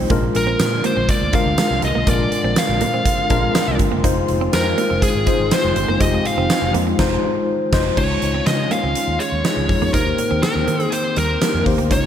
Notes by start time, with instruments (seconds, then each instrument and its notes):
Already playing: tine electric piano G#3 D#4 F4 C5 G5, analog synth pad G#3
0.10 fingered electric bass A#1, analog synth pad D3 A#3 F4, tine electric piano G#3 D4 F4 A#4, clean electric guitar A#3, kick, closed hi-hat
0.35 fingered electric bass A#1, lead electric guitar A#4, muted clean electric guitar stroke, closed hi-hat
0.47 clean electric guitar C4
0.59 fingered electric bass A#2, muted clean electric guitar stroke, snare, closed hi-hat, tambourine
0.84 clean electric guitar A#3, lead electric guitar C5, closed hi-hat
0.97 fingered electric bass A#1, clean electric guitar C4
1.09 lead electric guitar D5, kick, closed hi-hat
1.22 fingered electric bass D2
1.33 tine electric piano G#3 D4 F4 A#4, clean electric guitar G#3, lead electric guitar F5, kick, closed hi-hat
1.46 fingered electric bass D2
1.58 clean electric guitar G#3, snare, closed hi-hat, tambourine
1.71 fingered electric bass C2
1.82 fingered electric bass C2, lead electric guitar D#5, muted clean electric guitar stroke, closed hi-hat
1.95 fingered electric bass B1, clean electric guitar A#3
2.06 fingered electric bass A#1, tine electric piano G#3 D4 F4 A#4, clean electric guitar A#3, analog synth pad C4, lead electric guitar D5, kick, closed hi-hat
2.32 muted clean electric guitar stroke, closed hi-hat
2.44 fingered electric bass A#1, clean electric guitar C4
2.56 lead electric guitar F5, muted clean electric guitar stroke, snare, closed hi-hat, tambourine
2.69 fingered electric bass A#1
2.81 fingered electric bass A#2, clean electric guitar A#3, closed hi-hat
2.94 clean electric guitar C4
3.06 kick, closed hi-hat
3.30 fingered electric bass A#1, tine electric piano G#3 D4 F4 A#4, clean electric guitar G#3, kick, closed hi-hat
3.55 clean electric guitar G#3, snare, closed hi-hat, tambourine
3.68 fingered electric bass C2
3.79 fingered electric bass G1, muted clean electric guitar stroke, kick, closed hi-hat
3.92 fingered electric bass F#1, clean electric guitar A#3
4.03 fingered electric bass F1, analog synth pad D#3 G#3, tine electric piano G#3 D#4 F4 C5, clean electric guitar G#3, kick, closed hi-hat
4.28 fingered electric bass F1, muted clean electric guitar stroke, closed hi-hat
4.41 clean electric guitar C4
4.53 fingered electric bass F2, lead electric guitar A#4, muted clean electric guitar stroke, snare, closed hi-hat, tambourine
4.78 clean electric guitar A#3, closed hi-hat
4.90 fingered electric bass F1, clean electric guitar C4
5.02 lead electric guitar G#4, kick, closed hi-hat
5.15 fingered electric bass G#1
5.26 tine electric piano G#3 D#4 F4 C5, clean electric guitar G#3, kick, closed hi-hat
5.40 fingered electric bass G#1
5.51 clean electric guitar G#3, lead electric guitar C5, snare, closed hi-hat, tambourine
5.64 fingered electric bass F1
5.76 fingered electric bass G1, muted clean electric guitar stroke, closed hi-hat
5.88 fingered electric bass F#1, clean electric guitar A#3
6.01 fingered electric bass F1, tine electric piano G#3 D#4 F4 G4, clean electric guitar G#3, lead electric guitar D#5, kick, closed hi-hat
6.25 lead electric guitar F5, muted clean electric guitar stroke, closed hi-hat
6.37 fingered electric bass F1, clean electric guitar C4
6.50 muted clean electric guitar stroke, snare, closed hi-hat, tambourine
6.62 fingered electric bass F1
6.74 fingered electric bass F2, clean electric guitar A#3, closed hi-hat
6.87 clean electric guitar C4
6.99 fingered electric bass F1, tine electric piano G#3 D#4 F4 C5, kick, snare, crash
7.73 fingered electric bass F1, tine electric piano C5 D#5, kick, snare, crash
7.97 fingered electric bass C#2, analog synth pad D#3 G#3 C#4 F4, tine electric piano G#3 D#4 F4 C#5, clean electric guitar C#4, lead electric guitar C#5, kick, crash
8.22 fingered electric bass C#2, muted clean electric guitar stroke, closed hi-hat
8.34 clean electric guitar C4
8.46 fingered electric bass C#3, lead electric guitar D#5, muted clean electric guitar stroke, snare, closed hi-hat
8.71 clean electric guitar A#3, lead electric guitar F5, closed hi-hat
8.83 fingered electric bass C#2, clean electric guitar C4
8.95 closed hi-hat
9.08 fingered electric bass D#2
9.20 clean electric guitar G#3, lead electric guitar C#5, closed hi-hat
9.32 fingered electric bass D#2
9.44 tine electric piano G#3 D#4 F4 G#4, clean electric guitar G#3, snare, closed hi-hat
9.57 fingered electric bass C#2
9.69 fingered electric bass F2, tine electric piano G#3 D#4 F4 C#5, muted clean electric guitar stroke, kick, open hi-hat
9.81 fingered electric bass E2, clean electric guitar A#3
9.93 fingered electric bass D#2, tine electric piano A#3 D#4 G4 C5, analog synth pad A#3 C4 G4, clean electric guitar D#4, lead electric guitar A#4, kick, closed hi-hat
10.18 muted clean electric guitar stroke, closed hi-hat
10.31 fingered electric bass D#2, clean electric guitar C4
10.43 lead electric guitar A#4, muted clean electric guitar stroke, snare, closed hi-hat
10.55 fingered electric bass D#2
10.68 fingered electric bass D#3, clean electric guitar A#3, closed hi-hat
10.80 clean electric guitar C4, closed hi-hat
10.92 lead electric guitar C5, closed hi-hat
11.16 fingered electric bass D#2, clean electric guitar G3, lead electric guitar A#4, closed hi-hat
11.41 clean electric guitar G3, tine electric piano A#3 D#4 G4 A#4, snare, closed hi-hat
11.54 fingered electric bass F2
11.65 fingered electric bass D#2, tine electric piano A#3 D#4 G4 C5, muted clean electric guitar stroke, kick, open hi-hat
11.78 fingered electric bass D2, clean electric guitar A#3, closed hi-hat
11.90 fingered electric bass C#2, tine electric piano G#3 D#4 F4 C#5, analog synth pad G#3 C#4 F4, clean electric guitar C#4, lead electric guitar C#5, kick, closed hi-hat